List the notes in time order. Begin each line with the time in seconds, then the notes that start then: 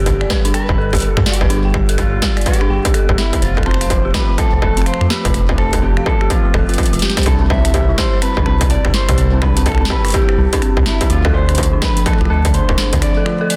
Already playing: G1 D3 G3 B3 G4
0.06 G4, kick, closed hi-hat
0.21 D5, finger snap
0.30 B4, kick, snare
0.45 D4, closed hi-hat
0.54 B4 G5, finger snap, closed hi-hat
0.69 F1 G4, kick
0.78 G1 A4
0.93 G4, kick, closed hi-hat
0.95 closed hi-hat
0.97 closed hi-hat
0.98 closed hi-hat
1.00 G4, closed hi-hat
1.02 closed hi-hat
1.09 A4
1.17 G2 G4, finger snap, kick
1.26 G4 D5, snare
1.33 closed hi-hat
1.41 G1 B4, kick
1.50 G1 D4, closed hi-hat
1.65 G5
1.74 G4, finger snap, kick
1.89 A4, closed hi-hat
1.98 F4 G4, finger snap, kick, closed hi-hat
2.13 G4
2.22 G4, kick, snare
2.37 D5, finger snap, closed hi-hat
2.41 closed hi-hat
2.46 G4 B4, kick, closed hi-hat
2.53 closed hi-hat
2.61 D4, finger snap
2.70 G1 G5
2.85 G4, kick, closed hi-hat
2.94 A4, finger snap, closed hi-hat
3.09 G1 G4, kick
3.18 E4 G4, finger snap, snare
3.33 G4, kick, closed hi-hat
3.42 F1 F3 A3 C4 F4 C5, closed hi-hat
3.57 A4, finger snap, kick
3.63 C4 C5, finger snap
3.66 finger snap
3.71 finger snap
3.74 finger snap
3.81 F5, finger snap, closed hi-hat
3.90 F4, kick, closed hi-hat
4.05 G4
4.14 F4 B4, finger snap, kick, snare
4.29 F4
4.38 F4 A4, finger snap, kick, closed hi-hat
4.53 C2 C5
4.62 F1 A4, kick
4.77 C4, closed hi-hat
4.82 finger snap
4.86 C5 F5, finger snap, closed hi-hat
4.94 finger snap
5.01 F2 F4, finger snap
5.10 G4 B4, snare
5.25 F1 F4, kick, closed hi-hat
5.34 F1 F4, finger snap, closed hi-hat
5.49 F4, kick
5.58 A4 C5, finger snap
5.73 A4, kick, closed hi-hat
5.82 C4 G4
5.97 F5, finger snap
6.06 F4 A4, kick
6.21 G4, finger snap
6.30 F4, kick, closed hi-hat
6.45 F4
6.54 F1 A4, finger snap, kick
6.69 F4, closed hi-hat
6.74 closed hi-hat
6.78 F4, finger snap, kick, closed hi-hat
6.83 closed hi-hat
6.86 closed hi-hat
6.93 F1 F4, closed hi-hat
6.99 F4 G4, snare, closed hi-hat
7.10 snare
7.17 C5, finger snap, kick, snare, closed hi-hat
7.21 snare, closed hi-hat
7.26 C2 C3 G3 D4 E4 A4, finger snap, kick, closed hi-hat
7.41 C4
7.50 C4 E5, kick
7.65 C4, finger snap, closed hi-hat
7.74 G4, kick, closed hi-hat
7.89 E4
7.98 G4 C5, finger snap, kick, snare
8.13 C5
8.22 C4 B4, finger snap, closed hi-hat
8.37 G1 D4, kick
8.46 C2 C4 B4, finger snap
8.61 C4, kick, closed hi-hat
8.70 C4 D5, closed hi-hat
8.85 G1 G4, finger snap, kick
8.94 E4 C5, snare
9.09 C2 G4, finger snap, kick, closed hi-hat
9.18 C2 C4 C5, closed hi-hat
9.33 C4
9.42 D4 B4, finger snap, kick
9.57 C4, closed hi-hat
9.66 C4 A4, finger snap, kick, closed hi-hat
9.69 finger snap
9.72 finger snap
9.75 finger snap
9.78 C4, finger snap
9.85 snare
9.90 G4 B4, kick
10.05 E4, finger snap, closed hi-hat
10.07 closed hi-hat
10.08 closed hi-hat
10.10 closed hi-hat
10.12 closed hi-hat
10.14 G4, kick, closed hi-hat
10.29 C5, finger snap
10.38 C2 C4
10.53 D4, kick, closed hi-hat
10.62 C4, finger snap, closed hi-hat
10.77 C2 C4, kick
10.86 C4 E4, finger snap, snare
11.01 G4, kick, closed hi-hat
11.10 D2 D3 F3 A3 C4 F4, closed hi-hat
11.25 A4, finger snap, kick
11.34 C5 D5
11.49 D4, finger snap, closed hi-hat
11.55 closed hi-hat
11.58 E4, kick, closed hi-hat
11.63 closed hi-hat
11.73 D4
11.82 D4 B4, finger snap, kick, snare
11.97 D4, closed hi-hat
12.06 A4, finger snap, kick, closed hi-hat
12.13 finger snap
12.21 C2 F4, finger snap
12.25 finger snap
12.30 D2 A4
12.45 D5, kick, closed hi-hat
12.54 D4 C5, closed hi-hat
12.69 D1 E4, finger snap, kick
12.78 D4, snare
12.93 D2 D4, kick, closed hi-hat
13.02 D4 D5, finger snap, closed hi-hat
13.17 A4
13.26 F4, finger snap
13.41 A4
13.50 D5, closed hi-hat